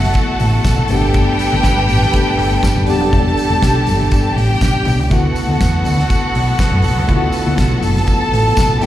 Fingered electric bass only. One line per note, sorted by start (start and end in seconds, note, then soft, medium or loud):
0.40 0.58 A1 loud
0.65 0.82 B1 loud
0.90 1.24 G1 loud
1.53 1.61 G1 loud
1.64 1.89 G1 loud
1.89 2.06 A1 loud
2.38 2.55 G1 medium
2.76 2.88 F#1 medium
2.88 3.00 E1 loud
3.00 3.09 F#1 medium
3.13 3.30 E1 loud
3.50 3.58 E1 medium
3.63 3.89 B1 loud
3.87 4.04 G1 loud
4.36 4.53 A1 medium
4.62 4.70 B1 loud
4.87 5.00 B1 loud
5.00 5.07 C#2 loud
5.11 5.28 D2 loud
5.49 5.57 D2 loud
5.61 5.78 E2 loud
5.86 6.03 D2 loud
6.36 6.52 B1 loud
6.73 6.81 F#2 medium
6.85 6.98 B1 medium
6.98 7.06 C#2 medium
7.09 7.26 D2 loud
7.47 7.55 D2 loud
7.58 7.75 B1 loud
7.83 8.00 F#1 loud
8.33 8.50 A1 loud
8.58 8.75 B1 medium
8.83 8.86 G1 loud